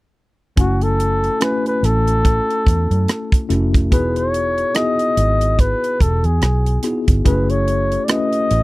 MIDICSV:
0, 0, Header, 1, 5, 480
1, 0, Start_track
1, 0, Tempo, 835655
1, 330, Time_signature, 4, 2, 24, 8
1, 4958, End_track
2, 0, Start_track
2, 0, Title_t, "Flugelhorn"
2, 0, Program_c, 0, 56
2, 342, Note_on_c, 0, 66, 81
2, 477, Note_on_c, 0, 69, 93
2, 485, Note_off_c, 0, 66, 0
2, 819, Note_on_c, 0, 71, 89
2, 828, Note_off_c, 0, 69, 0
2, 954, Note_off_c, 0, 71, 0
2, 962, Note_on_c, 0, 71, 85
2, 1063, Note_on_c, 0, 69, 97
2, 1071, Note_off_c, 0, 71, 0
2, 2016, Note_off_c, 0, 69, 0
2, 2254, Note_on_c, 0, 71, 82
2, 2396, Note_on_c, 0, 73, 90
2, 2405, Note_off_c, 0, 71, 0
2, 2731, Note_on_c, 0, 75, 103
2, 2740, Note_off_c, 0, 73, 0
2, 3219, Note_on_c, 0, 71, 88
2, 3227, Note_off_c, 0, 75, 0
2, 3455, Note_on_c, 0, 69, 79
2, 3464, Note_off_c, 0, 71, 0
2, 3595, Note_on_c, 0, 68, 66
2, 3603, Note_off_c, 0, 69, 0
2, 3932, Note_off_c, 0, 68, 0
2, 4171, Note_on_c, 0, 71, 77
2, 4310, Note_on_c, 0, 73, 88
2, 4319, Note_off_c, 0, 71, 0
2, 4623, Note_on_c, 0, 74, 59
2, 4631, Note_off_c, 0, 73, 0
2, 4657, Note_on_c, 0, 75, 91
2, 4666, Note_off_c, 0, 74, 0
2, 4958, Note_off_c, 0, 75, 0
2, 4958, End_track
3, 0, Start_track
3, 0, Title_t, "Tine electric piano"
3, 0, Program_c, 1, 4
3, 324, Note_on_c, 1, 57, 62
3, 325, Note_on_c, 1, 61, 57
3, 326, Note_on_c, 1, 64, 58
3, 329, Note_on_c, 1, 66, 55
3, 332, Note_on_c, 1, 80, 70
3, 448, Control_c, 1, 64, 127
3, 732, Note_off_c, 1, 57, 0
3, 732, Note_off_c, 1, 61, 0
3, 733, Note_off_c, 1, 64, 0
3, 735, Note_off_c, 1, 66, 0
3, 736, Note_off_c, 1, 80, 0
3, 806, Note_on_c, 1, 57, 68
3, 808, Note_on_c, 1, 61, 57
3, 810, Note_on_c, 1, 64, 65
3, 812, Note_on_c, 1, 66, 55
3, 812, Note_on_c, 1, 80, 67
3, 1600, Note_off_c, 1, 57, 0
3, 1601, Note_off_c, 1, 61, 0
3, 1601, Note_off_c, 1, 64, 0
3, 1602, Note_off_c, 1, 66, 0
3, 1603, Note_off_c, 1, 80, 0
3, 2005, Note_on_c, 1, 57, 67
3, 2005, Note_on_c, 1, 64, 64
3, 2006, Note_on_c, 1, 61, 64
3, 2007, Note_on_c, 1, 66, 61
3, 2008, Note_on_c, 1, 69, 75
3, 2210, Note_off_c, 1, 57, 0
3, 2210, Note_off_c, 1, 61, 0
3, 2210, Note_off_c, 1, 64, 0
3, 2211, Note_off_c, 1, 66, 0
3, 2211, Note_off_c, 1, 69, 0
3, 2247, Note_on_c, 1, 59, 59
3, 2248, Note_on_c, 1, 63, 57
3, 2248, Note_on_c, 1, 64, 53
3, 2250, Note_on_c, 1, 66, 59
3, 2251, Note_on_c, 1, 68, 72
3, 2256, Control_c, 1, 64, 0
3, 2367, Control_c, 1, 64, 127
3, 2653, Note_off_c, 1, 59, 0
3, 2654, Note_off_c, 1, 63, 0
3, 2654, Note_off_c, 1, 64, 0
3, 2655, Note_off_c, 1, 66, 0
3, 2655, Note_off_c, 1, 68, 0
3, 2722, Note_on_c, 1, 63, 60
3, 2723, Note_on_c, 1, 59, 64
3, 2724, Note_on_c, 1, 64, 60
3, 2727, Note_on_c, 1, 66, 62
3, 2728, Note_on_c, 1, 68, 71
3, 3517, Note_off_c, 1, 59, 0
3, 3517, Note_off_c, 1, 63, 0
3, 3518, Note_off_c, 1, 64, 0
3, 3519, Note_off_c, 1, 66, 0
3, 3520, Note_off_c, 1, 68, 0
3, 3923, Note_on_c, 1, 59, 56
3, 3925, Note_on_c, 1, 63, 53
3, 3928, Note_on_c, 1, 64, 52
3, 3928, Note_on_c, 1, 66, 51
3, 3928, Note_on_c, 1, 68, 62
3, 4128, Note_off_c, 1, 59, 0
3, 4129, Note_off_c, 1, 63, 0
3, 4130, Note_off_c, 1, 68, 0
3, 4131, Note_off_c, 1, 64, 0
3, 4131, Note_off_c, 1, 66, 0
3, 4162, Note_on_c, 1, 57, 67
3, 4163, Note_on_c, 1, 64, 57
3, 4164, Note_on_c, 1, 61, 62
3, 4167, Note_on_c, 1, 66, 60
3, 4168, Note_on_c, 1, 68, 72
3, 4176, Control_c, 1, 64, 0
3, 4290, Control_c, 1, 64, 127
3, 4570, Note_off_c, 1, 57, 0
3, 4570, Note_off_c, 1, 61, 0
3, 4570, Note_off_c, 1, 64, 0
3, 4572, Note_off_c, 1, 66, 0
3, 4573, Note_off_c, 1, 68, 0
3, 4642, Note_on_c, 1, 57, 68
3, 4644, Note_on_c, 1, 61, 63
3, 4646, Note_on_c, 1, 64, 58
3, 4646, Note_on_c, 1, 66, 64
3, 4650, Note_on_c, 1, 71, 76
3, 4958, Note_off_c, 1, 57, 0
3, 4958, Note_off_c, 1, 61, 0
3, 4958, Note_off_c, 1, 64, 0
3, 4958, Note_off_c, 1, 66, 0
3, 4958, Note_off_c, 1, 71, 0
3, 4958, End_track
4, 0, Start_track
4, 0, Title_t, "Fingered electric bass"
4, 0, Program_c, 2, 33
4, 331, Note_on_c, 2, 30, 89
4, 736, Note_off_c, 2, 30, 0
4, 1050, Note_on_c, 2, 33, 83
4, 1370, Note_off_c, 2, 33, 0
4, 1533, Note_on_c, 2, 40, 75
4, 1649, Note_off_c, 2, 40, 0
4, 1670, Note_on_c, 2, 42, 87
4, 1755, Note_off_c, 2, 42, 0
4, 2010, Note_on_c, 2, 29, 81
4, 2253, Note_off_c, 2, 29, 0
4, 2253, Note_on_c, 2, 28, 88
4, 2656, Note_off_c, 2, 28, 0
4, 2970, Note_on_c, 2, 32, 86
4, 3290, Note_off_c, 2, 32, 0
4, 3452, Note_on_c, 2, 28, 82
4, 3568, Note_off_c, 2, 28, 0
4, 3585, Note_on_c, 2, 40, 77
4, 3671, Note_off_c, 2, 40, 0
4, 3686, Note_on_c, 2, 35, 82
4, 3889, Note_off_c, 2, 35, 0
4, 4071, Note_on_c, 2, 31, 74
4, 4154, Note_off_c, 2, 31, 0
4, 4168, Note_on_c, 2, 30, 96
4, 4572, Note_off_c, 2, 30, 0
4, 4889, Note_on_c, 2, 33, 78
4, 4958, Note_off_c, 2, 33, 0
4, 4958, End_track
5, 0, Start_track
5, 0, Title_t, "Drums"
5, 330, Note_on_c, 9, 36, 105
5, 330, Note_on_c, 9, 42, 82
5, 387, Note_off_c, 9, 36, 0
5, 387, Note_off_c, 9, 42, 0
5, 468, Note_on_c, 9, 42, 45
5, 525, Note_off_c, 9, 42, 0
5, 574, Note_on_c, 9, 42, 54
5, 632, Note_off_c, 9, 42, 0
5, 711, Note_on_c, 9, 42, 37
5, 769, Note_off_c, 9, 42, 0
5, 809, Note_on_c, 9, 42, 74
5, 816, Note_on_c, 9, 37, 104
5, 866, Note_off_c, 9, 42, 0
5, 874, Note_off_c, 9, 37, 0
5, 954, Note_on_c, 9, 42, 37
5, 1011, Note_off_c, 9, 42, 0
5, 1057, Note_on_c, 9, 42, 78
5, 1060, Note_on_c, 9, 37, 35
5, 1114, Note_off_c, 9, 42, 0
5, 1117, Note_off_c, 9, 37, 0
5, 1192, Note_on_c, 9, 42, 44
5, 1249, Note_off_c, 9, 42, 0
5, 1291, Note_on_c, 9, 36, 80
5, 1293, Note_on_c, 9, 42, 72
5, 1349, Note_off_c, 9, 36, 0
5, 1351, Note_off_c, 9, 42, 0
5, 1439, Note_on_c, 9, 42, 38
5, 1496, Note_off_c, 9, 42, 0
5, 1531, Note_on_c, 9, 36, 84
5, 1540, Note_on_c, 9, 42, 67
5, 1589, Note_off_c, 9, 36, 0
5, 1597, Note_off_c, 9, 42, 0
5, 1673, Note_on_c, 9, 42, 41
5, 1730, Note_off_c, 9, 42, 0
5, 1772, Note_on_c, 9, 42, 69
5, 1777, Note_on_c, 9, 37, 84
5, 1829, Note_off_c, 9, 42, 0
5, 1835, Note_off_c, 9, 37, 0
5, 1909, Note_on_c, 9, 36, 88
5, 1917, Note_on_c, 9, 42, 55
5, 1966, Note_off_c, 9, 36, 0
5, 1974, Note_off_c, 9, 42, 0
5, 2012, Note_on_c, 9, 42, 74
5, 2020, Note_on_c, 9, 37, 33
5, 2069, Note_off_c, 9, 42, 0
5, 2077, Note_off_c, 9, 37, 0
5, 2151, Note_on_c, 9, 36, 82
5, 2155, Note_on_c, 9, 42, 51
5, 2208, Note_off_c, 9, 36, 0
5, 2212, Note_off_c, 9, 42, 0
5, 2251, Note_on_c, 9, 36, 98
5, 2253, Note_on_c, 9, 42, 81
5, 2308, Note_off_c, 9, 36, 0
5, 2311, Note_off_c, 9, 42, 0
5, 2390, Note_on_c, 9, 42, 47
5, 2448, Note_off_c, 9, 42, 0
5, 2495, Note_on_c, 9, 42, 62
5, 2552, Note_off_c, 9, 42, 0
5, 2630, Note_on_c, 9, 42, 37
5, 2687, Note_off_c, 9, 42, 0
5, 2727, Note_on_c, 9, 42, 76
5, 2734, Note_on_c, 9, 37, 96
5, 2784, Note_off_c, 9, 42, 0
5, 2791, Note_off_c, 9, 37, 0
5, 2868, Note_on_c, 9, 42, 41
5, 2925, Note_off_c, 9, 42, 0
5, 2971, Note_on_c, 9, 42, 69
5, 3029, Note_off_c, 9, 42, 0
5, 3108, Note_on_c, 9, 42, 48
5, 3165, Note_off_c, 9, 42, 0
5, 3209, Note_on_c, 9, 36, 76
5, 3212, Note_on_c, 9, 42, 68
5, 3267, Note_off_c, 9, 36, 0
5, 3269, Note_off_c, 9, 42, 0
5, 3354, Note_on_c, 9, 42, 39
5, 3411, Note_off_c, 9, 42, 0
5, 3449, Note_on_c, 9, 36, 78
5, 3455, Note_on_c, 9, 42, 66
5, 3507, Note_off_c, 9, 36, 0
5, 3512, Note_off_c, 9, 42, 0
5, 3584, Note_on_c, 9, 42, 40
5, 3642, Note_off_c, 9, 42, 0
5, 3686, Note_on_c, 9, 42, 74
5, 3691, Note_on_c, 9, 37, 85
5, 3743, Note_off_c, 9, 42, 0
5, 3749, Note_off_c, 9, 37, 0
5, 3828, Note_on_c, 9, 42, 51
5, 3885, Note_off_c, 9, 42, 0
5, 3922, Note_on_c, 9, 42, 69
5, 3930, Note_on_c, 9, 37, 35
5, 3979, Note_off_c, 9, 42, 0
5, 3987, Note_off_c, 9, 37, 0
5, 4066, Note_on_c, 9, 36, 83
5, 4066, Note_on_c, 9, 42, 55
5, 4123, Note_off_c, 9, 42, 0
5, 4124, Note_off_c, 9, 36, 0
5, 4168, Note_on_c, 9, 36, 94
5, 4169, Note_on_c, 9, 42, 80
5, 4225, Note_off_c, 9, 36, 0
5, 4226, Note_off_c, 9, 42, 0
5, 4306, Note_on_c, 9, 42, 43
5, 4363, Note_off_c, 9, 42, 0
5, 4410, Note_on_c, 9, 42, 58
5, 4468, Note_off_c, 9, 42, 0
5, 4548, Note_on_c, 9, 42, 40
5, 4605, Note_off_c, 9, 42, 0
5, 4642, Note_on_c, 9, 42, 77
5, 4650, Note_on_c, 9, 37, 103
5, 4700, Note_off_c, 9, 42, 0
5, 4707, Note_off_c, 9, 37, 0
5, 4782, Note_on_c, 9, 42, 44
5, 4840, Note_off_c, 9, 42, 0
5, 4886, Note_on_c, 9, 42, 74
5, 4944, Note_off_c, 9, 42, 0
5, 4958, End_track
0, 0, End_of_file